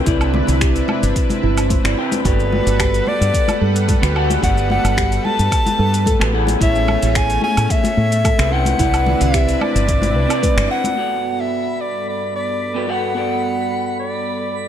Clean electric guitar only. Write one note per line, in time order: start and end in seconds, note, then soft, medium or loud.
0.04 1.80 C4 medium
0.04 1.81 E4 medium
0.04 1.81 G4 medium
0.04 1.82 B4 medium
0.04 1.82 D5 medium
1.84 1.94 C4 medium
1.84 1.94 E4 medium
1.84 1.94 G4 medium
1.84 1.95 B4 medium
1.84 1.95 D5 medium
1.97 2.20 C4 medium
1.97 2.21 E4 medium
1.97 2.21 G4 medium
1.97 2.21 B4 medium
1.97 2.21 G5 medium
2.23 3.99 B3 medium
2.23 3.99 F#4 medium
2.23 4.00 G4 medium
2.23 4.00 A4 medium
2.23 4.01 D5 medium
4.01 4.12 B3 medium
4.01 4.12 F#4 medium
4.01 4.12 G4 medium
4.01 4.13 A4 medium
4.01 4.13 B4 medium
4.15 4.38 B3 medium
4.15 4.39 F#4 medium
4.15 4.39 G4 medium
4.15 4.39 A4 medium
4.15 4.39 F#5 loud
4.41 6.17 B3 medium
4.41 6.17 F#4 medium
4.41 6.18 G4 medium
4.41 6.18 A4 medium
4.41 6.19 D5 medium
6.19 6.30 B3 medium
6.19 6.30 F#4 medium
6.19 6.30 G4 medium
6.19 6.30 A4 medium
6.19 6.31 B4 medium
6.33 6.56 B3 medium
6.33 6.57 E4 medium
6.33 6.57 G#4 medium
6.33 6.57 A4 medium
6.33 6.57 F#5 medium
6.59 8.35 B3 medium
6.59 8.35 E4 medium
6.59 8.36 G#4 medium
6.59 8.36 A4 medium
6.59 8.37 C#5 medium
8.38 8.48 B3 medium
8.38 8.49 E4 medium
8.38 8.49 G#4 medium
8.38 8.49 A4 medium
8.38 8.49 B4 medium
8.51 8.75 C4 medium
8.51 8.75 E4 medium
8.51 8.75 G4 medium
8.51 8.75 B4 medium
8.51 8.76 G5 loud
8.78 10.26 C4 medium
8.78 10.27 E4 medium
8.78 10.27 G4 medium
8.78 10.28 B4 medium
8.78 10.28 D5 medium
10.28 10.93 C4 medium
10.28 10.94 E4 medium
10.28 10.94 G4 medium
10.28 10.95 B4 medium
10.28 10.95 D5 medium
10.95 12.71 B3 medium
10.95 12.72 F#4 medium
10.95 12.72 G4 medium
10.95 12.73 A4 medium
10.95 12.73 D5 medium
12.74 12.85 B3 medium
12.74 12.85 F#4 medium
12.74 12.85 G4 medium
12.74 12.85 A4 medium
12.74 12.86 B4 medium
12.87 13.11 B3 medium
12.87 13.11 F#4 medium
12.87 13.12 G4 medium
12.87 13.12 A4 medium
12.87 13.12 F#5 medium
13.14 14.68 B3 medium
13.14 14.68 F#4 medium
13.14 14.68 G4 medium
13.14 14.68 A4 medium
13.14 14.68 D5 medium